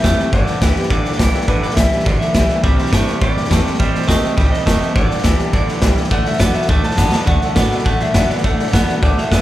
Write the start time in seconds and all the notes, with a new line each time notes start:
Already playing: G2 E5
0.03 E2 C3 E3 G3 A3 C4 E4 C5 E5 G5, kick, snare, hi-hat pedal
0.17 C4 E4 C5 G5, muted upright bass stroke, snare
0.32 G1 G2 D3 B4 D5 G5, kick, snare
0.46 B4 D5 G5, muted upright bass stroke, snare
0.61 D2 G2 D3 E3 G3 B3 G4 B4 D5 F#5, kick, snare, hi-hat pedal
0.76 B3 G4 B4 D5 G5, muted upright bass stroke, snare
0.83 snare
0.89 E2 G2 D3 B4 D5 G5, kick, snare
1.04 D2 B4 D5 G5, snare
1.12 snare
1.19 B1 G2 D3 E3 G3 B3 G4 B4 D5 G5, kick, snare, hi-hat pedal
1.34 B3 G4 B4 D5 G5, muted upright bass stroke, snare
1.41 snare
1.47 G1 G2 D3 B4 D5 G5, kick, snare
1.62 D2 B4 D5 G5, snare
1.70 snare
1.75 B1 G2 D3 E3 G3 B3 D5 E5 G5, kick, snare, hi-hat pedal
1.79 G4
1.90 B3 G4 B4 D5 G5, snare
1.99 snare
2.05 G1 G2 D3 B4 D5 G5, kick, snare
2.20 B4 D5 E5 G5, muted upright bass stroke, snare
2.34 B1 G2 D3 E3 G3 B3 G4 B4 D5 G5, kick, snare, hi-hat pedal
2.48 B3 G4 B4 D5 G5, muted upright bass stroke, snare
2.62 C2 C3 G3 C5 D5 E5 G5, kick, snare
2.78 C5 E5 G5, muted upright bass stroke, snare
2.86 snare
2.92 G2 C3 E3 G3 A3 C4 E4 C5 E5, kick, snare, hi-hat pedal
3.06 C4 E4 C5 E5 G5, muted upright bass stroke, snare
3.21 G2 A2 C3 G3 C5 D5 E5 F#5, kick, snare
3.35 G2 C5 E5 G5, snare
3.44 snare
3.49 E2 C3 E3 G3 A3 C4 E4 C5 E5 G5, kick, snare, hi-hat pedal
3.63 C4 E4 C5 E5 G5, muted upright bass stroke, snare
3.74 snare
3.79 C2 C3 G3 C5 D#5 G5, kick, snare
3.94 G2 C5 D#5 G5, snare
4.02 snare
4.07 D#2 C3 D#3 A3 A#3 C4 G4 C5 D#5 G5, kick, snare, hi-hat pedal
4.23 C4 G4 C5 D#5 G5, muted upright bass stroke, snare
4.36 C2 G2 C3 G3 C5 G5, kick, snare
4.46 G5
4.51 C5 D#5 G5, muted upright bass stroke, snare
4.65 F1 C3 D#3 A3 A#3 C4 G4 C5 D#5 G5, kick, snare, hi-hat pedal
4.81 C4 G4 C5 D#5 G5, muted upright bass stroke, snare
4.95 G1 G2 D3 B4 D5 G5, kick, snare
5.10 B4 D5 G5, muted upright bass stroke, snare
5.18 snare
5.23 D2 G2 D3 E3 G3 B3 G4 B4 D5 G5, kick, snare, hi-hat pedal
5.37 B3 G4 B4 D5 A5, muted upright bass stroke, snare
5.52 E2 G2 D3 B4 D5 G5, kick, snare
5.66 D2 B4 D5 G5, snare
5.81 B1 G2 D3 E3 G3 B3 G4 B4 D5 G5, kick, snare, hi-hat pedal
5.95 B3 G4 B4 D5 G5, muted upright bass stroke, snare
6.04 snare
6.11 D2 D3 A3 A4 D5 F#5, kick, snare
6.24 A2 A4 D5 E5 F#5, snare
6.33 snare
6.39 F#2 D3 A3 B3 D4 F#4 A4 D5 F#5, kick, snare, hi-hat pedal
6.54 D4 F#4 A4 D5 E5 F#5, muted upright bass stroke, snare
6.61 snare
6.68 D2 D3 A3 A4 D5 F#5, kick, snare
6.83 A4 D5 F#5 A5, muted upright bass stroke, snare
6.91 snare
6.97 F#2 D3 A3 B3 D4 F#4 A4 D5 F#5, kick, snare, hi-hat pedal
7.12 D4 F#4 A4 D5 F#5 A5, muted upright bass stroke, snare
7.25 D2 D3 A3 A4 D5 F#5, kick, snare
7.41 A4 D5 F#5, snare
7.55 A2 D3 A3 B3 F#4 A4 D5 F#5, kick, snare, hi-hat pedal
7.59 D4
7.71 A4 D5 F#5, muted upright bass stroke, snare
7.79 snare
7.84 A2 C3 D3 A3 A4 D5 F#5, kick, snare
7.99 A2 A4 D5 E5 F#5, snare
8.14 F#2 D3 A3 B3 D4 F#4 A4 D5 F#5, kick, snare, hi-hat pedal
8.30 A4 D5 F#5, muted upright bass stroke, snare
8.38 snare
8.43 D2 D3 A3 A4 D5 F#5, kick, snare
8.59 A4 D5 F#5, snare
8.66 snare
8.73 F#2 D3 A3 B3 D4 F#4 A4 D5 F#5, kick, snare, hi-hat pedal
8.88 D4 F#4 A4 D5 F#5, muted upright bass stroke, snare
9.02 D2 B2 D3 A3 A4 D5 F#5, kick, snare
9.17 A4 D5 E5 F#5, muted upright bass stroke, snare
9.30 F#2 A2 D3 B3 A4 D5 F#5, kick, snare, hi-hat pedal